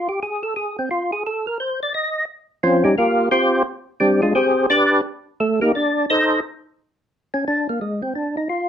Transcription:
0.09 0.20 G4 medium
0.23 0.42 G#4 medium
0.43 0.54 A4 loud
0.56 0.77 G#4 medium
0.79 0.89 C4 medium
0.91 1.11 F4 medium
1.12 1.23 G#4 medium
1.27 1.46 A4 medium
1.47 1.58 A#4 medium
1.60 1.80 C5 medium
1.83 1.93 D5 medium
1.94 2.25 D#5 loud
2.63 2.84 F3 medium
2.63 2.84 C4 medium
2.63 2.83 C#4 medium
2.63 2.84 F4 medium
2.84 2.96 G3 medium
2.84 2.96 C#4 medium
2.84 2.96 D#4 medium
2.84 2.95 G4 loud
2.98 3.29 A#3 medium
2.98 3.29 F4 medium
2.98 3.29 G4 medium
2.98 3.29 A#4 medium
3.31 3.63 C4 medium
3.31 3.63 F4 medium
3.31 3.63 G4 medium
3.31 3.63 C5 loud
4.00 4.21 G3 medium
4.00 4.21 C4 medium
4.00 4.21 D4 medium
4.00 4.21 G4 medium
4.22 4.34 G#3 medium
4.22 4.34 D4 medium
4.22 4.34 F4 medium
4.22 4.33 G#4 medium
4.35 4.66 C4 medium
4.35 4.66 G4 medium
4.35 4.66 G#4 medium
4.35 4.66 C5 medium
4.70 5.01 D4 medium
4.70 5.01 G4 loud
4.70 5.01 B4 medium
4.70 5.01 D5 loud
5.40 5.60 A3 medium
5.40 5.60 A4 medium
5.61 5.72 A#3 medium
5.61 5.72 D#4 medium
5.61 5.72 G4 medium
5.61 5.72 A#4 medium
5.75 6.06 D4 medium
5.75 6.05 D5 medium
6.10 6.40 D#4 medium
6.10 6.40 A4 medium
6.10 6.40 C5 medium
6.10 6.40 D#5 loud
7.34 7.45 C#4 medium
7.48 7.67 D4 loud
7.69 7.80 A#3 medium
7.81 8.02 G#3 medium
8.02 8.13 C4 medium
8.15 8.36 D4 medium
8.37 8.48 D#4 medium
8.49 8.69 F4 medium

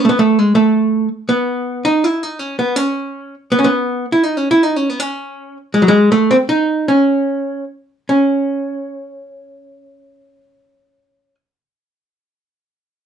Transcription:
0.05 0.09 A3 medium
0.09 0.18 B3 medium
0.19 0.39 A3 medium
0.39 0.55 G#3 medium
0.55 1.08 A3 medium
1.29 1.87 B3 medium
1.85 2.04 D#4 loud
2.04 2.23 E4 medium
2.23 2.39 D#4 loud
2.39 2.58 C#4 loud
2.59 2.76 B3 medium
2.76 3.34 C#4 loud
3.52 3.59 B3 medium
3.59 3.67 C#4 medium
3.64 4.05 B3 medium
4.12 4.23 E4 medium
4.23 4.37 D#4 medium
4.37 4.51 C#4 medium
4.51 4.63 E4 loud
4.63 4.76 D#4 loud
4.76 4.89 C#4 medium
4.89 5.00 B3 medium
5.00 5.57 C#4 loud
5.74 5.82 G#3 medium
5.82 5.89 F#3 medium
5.88 6.11 G#3 loud
6.12 6.32 A3 medium
6.31 6.36 C4 medium
6.49 6.88 D#4 medium
6.88 7.64 C#4 medium
8.09 11.35 C#4 medium

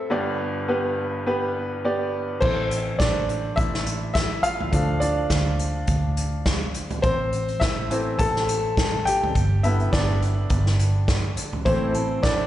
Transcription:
0.00 0.13 C4 medium
0.00 0.14 A4 medium
0.00 0.14 C5 medium
0.00 0.13 E5 medium
0.10 2.38 G1 medium
0.10 2.38 G2 medium
0.10 0.66 B3 medium
0.10 0.66 G4 medium
0.10 0.66 D5 medium
0.68 1.24 B3 medium
0.68 1.24 G4 medium
0.68 1.24 B4 medium
1.26 1.82 B3 medium
1.26 1.82 G4 medium
1.26 1.82 B4 medium
1.84 2.40 B3 medium
1.84 2.40 G4 medium
1.84 2.40 D5 medium
2.41 2.96 A1 medium
2.41 4.69 E3 medium
2.41 4.69 A3 soft
2.41 4.69 C4 medium
2.41 3.01 C5 medium
2.41 kick loud
2.41 crash medium
2.71 closed hi-hat medium
2.99 3.54 A1 medium
2.99 3.54 D4 medium
2.99 3.59 D5 medium
2.99 kick loud
2.99 snare loud
2.99 closed hi-hat medium
3.29 closed hi-hat medium
3.56 4.40 A1 loud
3.56 4.12 E4 medium
3.56 4.12 E5 medium
3.56 kick loud
3.56 closed hi-hat medium
3.74 snare soft
3.86 closed hi-hat medium
4.14 4.42 E4 medium
4.14 4.44 E5 medium
4.14 kick loud
4.14 snare loud
4.14 closed hi-hat medium
4.43 4.98 F4 medium
4.43 5.03 F5 medium
4.43 closed hi-hat medium
4.60 floor tom medium
4.72 5.27 D2 medium
4.72 5.12 F3 soft
4.72 5.13 A3 soft
4.72 5.01 D4 medium
4.72 kick loud
4.72 closed hi-hat medium
5.00 5.56 D4 medium
5.00 5.55 D5 medium
5.00 closed hi-hat medium
5.30 5.84 D2 medium
5.30 kick loud
5.30 snare loud
5.30 closed hi-hat medium
5.59 closed hi-hat medium
5.87 6.71 D2 medium
5.87 kick loud
5.87 closed hi-hat medium
6.17 closed hi-hat medium
6.46 kick loud
6.46 snare loud
6.46 closed hi-hat medium
6.74 closed hi-hat medium
6.90 closed hi-hat soft
6.90 floor tom medium
7.02 7.58 A1 medium
7.02 7.58 C4 medium
7.02 7.57 C5 medium
7.02 kick loud
7.02 closed hi-hat medium
7.32 closed hi-hat medium
7.48 closed hi-hat soft
7.60 8.15 A1 medium
7.60 8.15 E4 medium
7.60 8.20 E5 medium
7.60 kick medium
7.60 snare loud
7.60 closed hi-hat medium
7.90 8.73 E3 soft
7.90 8.73 A3 soft
7.90 8.74 C4 medium
7.90 closed hi-hat medium
8.19 9.02 A1 loud
8.19 9.03 A4 medium
8.19 9.08 A5 loud
8.19 kick medium
8.19 closed hi-hat medium
8.36 snare soft
8.49 closed hi-hat medium
8.77 kick loud
8.77 snare loud
8.77 closed hi-hat medium
9.05 9.60 G4 medium
9.05 9.59 G5 medium
9.05 closed hi-hat medium
9.23 floor tom medium
9.35 9.89 G1 medium
9.35 kick loud
9.35 closed hi-hat medium
9.63 11.62 D3 soft
9.63 11.62 G3 soft
9.63 11.62 B3 medium
9.63 9.91 E4 medium
9.63 9.93 E5 medium
9.63 closed hi-hat medium
9.80 closed hi-hat soft
9.93 10.46 G1 medium
9.93 11.05 D4 medium
9.93 11.04 D5 medium
9.93 kick loud
9.93 snare loud
9.93 closed hi-hat medium
10.22 closed hi-hat medium
10.50 11.33 G1 loud
10.50 kick loud
10.50 closed hi-hat medium
10.66 snare soft
10.79 closed hi-hat medium
11.08 kick loud
11.08 snare loud
11.08 closed hi-hat medium
11.37 closed hi-hat medium
11.53 floor tom medium
11.65 12.19 A1 medium
11.65 11.94 A2 medium
11.65 11.94 E3 medium
11.65 12.47 E3 medium
11.65 12.47 A3 soft
11.65 11.95 A3 medium
11.65 11.95 C4 medium
11.65 12.20 C4 medium
11.65 11.94 E4 medium
11.65 11.93 A4 medium
11.65 12.25 C5 medium
11.65 kick loud
11.65 closed hi-hat medium
11.94 12.21 A3 soft
11.94 12.22 C4 soft
11.94 12.23 E4 soft
11.94 12.23 A4 medium
11.94 closed hi-hat medium
12.22 12.47 A1 medium
12.22 12.47 A3 medium
12.22 12.47 C4 medium
12.22 12.47 D4 medium
12.22 12.47 E4 medium
12.22 12.47 A4 medium
12.22 12.47 D5 medium
12.22 kick loud
12.22 snare loud
12.22 closed hi-hat medium

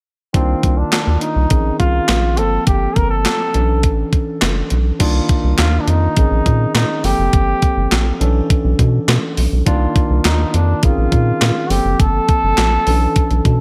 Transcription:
0.34 0.55 C2 loud
0.34 1.48 D#3 medium
0.34 1.48 A#3 medium
0.34 0.79 C4 medium
0.34 1.49 D4 medium
0.34 1.49 F4 medium
0.34 kick loud
0.34 closed hi-hat medium
0.63 0.84 C2 loud
0.63 kick medium
0.63 closed hi-hat medium
0.78 1.23 D4 medium
0.92 snare loud
0.92 clap medium
0.92 closed hi-hat medium
1.07 1.18 D#2 medium
1.21 1.79 D#4 medium
1.21 closed hi-hat medium
1.36 1.46 C2 medium
1.50 1.71 A#1 medium
1.50 2.38 D#3 medium
1.50 2.37 C4 medium
1.50 2.38 C#4 soft
1.50 2.38 G#4 medium
1.50 kick loud
1.50 closed hi-hat medium
1.79 2.00 C2 medium
1.79 2.39 F4 loud
1.79 kick medium
1.79 closed hi-hat medium
2.08 2.40 A#1 loud
2.08 snare loud
2.08 clap medium
2.08 closed hi-hat medium
2.37 2.59 G1 medium
2.37 3.52 F3 medium
2.37 3.52 A#3 medium
2.37 3.52 C4 medium
2.37 2.66 A4 loud
2.37 3.53 A4 medium
2.37 closed hi-hat medium
2.67 2.88 G1 loud
2.67 2.98 G4 medium
2.67 kick loud
2.67 closed hi-hat loud
2.96 3.27 G1 loud
2.96 3.10 A#4 loud
2.96 kick medium
2.96 closed hi-hat medium
3.10 3.94 A4 loud
3.25 snare loud
3.25 clap medium
3.25 closed hi-hat medium
3.54 3.85 B1 loud
3.54 4.97 E3 medium
3.54 4.97 C#4 medium
3.54 4.97 D4 soft
3.54 4.98 A4 medium
3.54 closed hi-hat medium
3.83 4.04 A1 medium
3.83 kick medium
3.83 closed hi-hat medium
4.13 kick medium
4.13 closed hi-hat medium
4.41 4.63 F#1 loud
4.41 snare loud
4.41 clap medium
4.41 closed hi-hat medium
4.70 4.92 B1 loud
4.70 closed hi-hat medium
4.99 5.21 C2 loud
4.99 6.14 D#3 medium
4.99 6.14 A#3 medium
4.99 6.14 D4 medium
4.99 6.15 F4 loud
4.99 kick loud
4.99 closed hi-hat medium
4.99 crash medium
5.29 kick loud
5.29 closed hi-hat medium
5.44 5.54 C2 medium
5.58 5.79 D#2 loud
5.58 5.83 F4 medium
5.58 snare loud
5.58 clap medium
5.58 closed hi-hat medium
5.81 5.90 D4 medium
5.88 6.08 F2 medium
5.88 6.75 D#4 medium
5.88 closed hi-hat medium
6.16 6.27 A#1 loud
6.16 7.04 D#3 medium
6.16 7.04 C4 medium
6.16 7.04 C#4 medium
6.16 7.04 G#4 medium
6.16 kick loud
6.16 closed hi-hat medium
6.31 6.42 A#1 loud
6.46 6.66 A#2 loud
6.46 kick medium
6.46 closed hi-hat medium
6.75 6.85 A#2 loud
6.75 7.06 D#4 medium
6.75 snare loud
6.75 clap medium
6.75 closed hi-hat medium
7.04 7.14 G1 loud
7.04 8.18 F3 medium
7.04 8.18 A#3 medium
7.04 8.19 C4 medium
7.04 8.21 G4 medium
7.04 8.19 A4 medium
7.04 open hi-hat medium
7.19 7.29 F#1 medium
7.33 7.54 G1 loud
7.33 kick loud
7.33 closed hi-hat medium
7.62 kick medium
7.62 closed hi-hat medium
7.77 7.87 G1 medium
7.92 8.12 A#1 medium
7.92 snare loud
7.92 clap medium
7.92 closed hi-hat medium
8.20 8.41 B1 loud
8.20 9.63 E3 medium
8.20 9.63 C#4 medium
8.20 9.63 D4 medium
8.20 9.64 A4 medium
8.20 closed hi-hat medium
8.50 kick loud
8.50 closed hi-hat medium
8.65 8.75 B1 loud
8.79 8.99 B2 loud
8.79 kick medium
8.79 closed hi-hat medium
9.08 9.18 B2 loud
9.08 snare loud
9.08 clap medium
9.08 closed hi-hat medium
9.37 9.48 B1 medium
9.37 open hi-hat medium
9.53 9.63 B1 medium
9.66 9.87 C2 loud
9.66 10.80 D#3 medium
9.66 10.80 A#3 medium
9.66 10.81 D4 medium
9.66 10.81 F4 loud
9.66 kick loud
9.66 closed hi-hat loud
9.96 kick loud
9.96 closed hi-hat medium
10.10 10.20 C2 medium
10.25 10.45 D#2 medium
10.25 10.56 D#4 medium
10.25 snare loud
10.25 clap medium
10.25 closed hi-hat medium
10.54 10.75 F2 medium
10.54 10.85 D4 medium
10.54 closed hi-hat medium
10.83 10.93 A#1 loud
10.83 11.70 D#3 medium
10.83 11.69 C4 medium
10.83 11.71 C#4 medium
10.83 11.72 F4 medium
10.83 11.71 G#4 medium
10.83 kick loud
10.83 closed hi-hat loud
10.98 11.08 A#1 loud
11.12 11.33 A#2 loud
11.12 kick medium
11.12 closed hi-hat medium
11.41 11.52 A#2 loud
11.41 snare loud
11.41 clap medium
11.41 closed hi-hat medium
11.69 11.81 G1 loud
11.69 12.84 F3 medium
11.69 12.84 A#3 medium
11.69 12.84 C4 medium
11.69 12.01 G4 medium
11.69 12.85 A4 medium
11.69 open hi-hat medium
11.85 11.95 F#1 loud
12.00 12.20 G1 loud
12.00 13.61 A4 loud
12.00 kick loud
12.00 closed hi-hat medium
12.29 kick medium
12.29 closed hi-hat medium
12.44 12.54 G1 medium
12.58 12.78 A#1 loud
12.58 snare loud
12.58 clap medium
12.58 closed hi-hat medium
12.86 13.07 B1 loud
12.86 13.61 E3 medium
12.86 13.61 C#4 medium
12.86 13.61 D4 medium
12.86 13.61 A4 medium
12.86 open hi-hat medium
13.16 kick loud
13.16 closed hi-hat medium
13.31 13.41 B1 loud
13.31 closed hi-hat soft
13.45 13.61 B2 loud
13.45 kick medium
13.45 closed hi-hat medium

